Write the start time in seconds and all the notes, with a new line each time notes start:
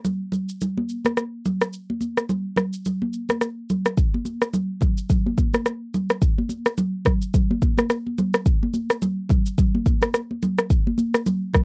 0.05 low conga, shaker
0.32 low conga, shaker
0.49 shaker
0.61 low conga, shaker
0.77 high conga
0.89 shaker
1.05 cross-stick, high conga, shaker
1.17 cross-stick, shaker
1.45 low conga, shaker
1.61 cross-stick, shaker
1.73 shaker
1.90 high conga
2.01 high conga, shaker
2.17 cross-stick, shaker
2.29 low conga, shaker
2.56 cross-stick, low conga, shaker
2.73 shaker
2.85 low conga, shaker
3.02 high conga
3.13 shaker
3.29 cross-stick, high conga, shaker
3.41 cross-stick, shaker
3.70 low conga, shaker
3.85 cross-stick, shaker
3.97 kick, shaker
4.14 high conga
4.25 high conga, shaker
4.41 cross-stick, shaker
4.53 low conga, shaker
4.81 kick, low conga, shaker
4.97 shaker
5.09 kick, low conga, shaker
5.26 high conga
5.38 kick, shaker
5.53 cross-stick, high conga, shaker
5.66 cross-stick, shaker
5.94 low conga, shaker
6.10 cross-stick, shaker
6.22 kick, shaker
6.38 high conga
6.49 high conga, shaker
6.66 cross-stick, shaker
6.78 low conga, shaker
7.05 kick, cross-stick, low conga, shaker
7.22 shaker
7.34 kick, low conga, shaker
7.51 high conga
7.62 kick, shaker
7.78 cross-stick, high conga, shaker
7.90 cross-stick, shaker
8.07 high conga
8.18 low conga, shaker
8.34 cross-stick, shaker
8.46 kick, shaker
8.63 high conga
8.74 high conga, shaker
8.90 cross-stick, shaker
9.02 low conga, shaker
9.29 kick, low conga, shaker
9.46 shaker
9.58 kick, low conga, shaker
9.75 high conga
9.86 kick, shaker
10.02 cross-stick, high conga, shaker
10.14 cross-stick, shaker
10.31 high conga
10.43 low conga, shaker
10.58 cross-stick, shaker
10.70 kick, shaker
10.87 high conga
10.98 high conga, shaker
11.14 cross-stick, shaker
11.26 low conga, shaker
11.54 kick, cross-stick, low conga, shaker